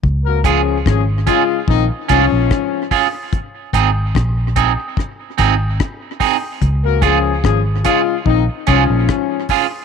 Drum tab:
HH |-x-x-x-o|px-x-x-o|px-x-x-o|
SD |--r---r-|--r-r-r-|--r---r-|
BD |oooooooo|oooooooo|oooooooo|